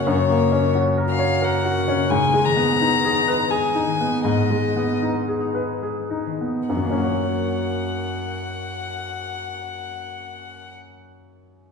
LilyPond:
<<
  \new Staff \with { instrumentName = "Violin" } { \time 3/4 \key fis \major \tempo 4 = 74 cis''4 r8 eis''8 fis''4 | gis''8 ais''4. gis''4 | dis''4 r2 | fis''2.~ |
fis''2. | }
  \new Staff \with { instrumentName = "Grand piano" } { \time 3/4 \key fis \major \tuplet 3/2 { <fis, cis'>8 ais8 cis'8 fis'8 ais'8 cis''8 ais'8 fis'8 cis'8 } | \tuplet 3/2 { gis,8 gis8 b8 dis'8 gis'8 b'8 gis'8 dis'8 b8 } | \tuplet 3/2 { gis,8 gis8 b8 dis'8 gis'8 b'8 gis'8 dis'8 b8 } | <fis, fis ais cis' fis' cis''>2.~ |
<fis, fis ais cis' fis' cis''>2. | }
  \new Staff \with { instrumentName = "Harp" } { \time 3/4 \key fis \major <fis, cis ais cis' fis'>8 ais8 cis'8 fis'8 ais8 cis8 | gis,8 dis8 b8 dis'8 gis8 dis8 | gis,8 gis8 b8 dis'8 gis8 dis8 | <fis, fis ais cis' fis' cis''>2.~ |
<fis, fis ais cis' fis' cis''>2. | }
>>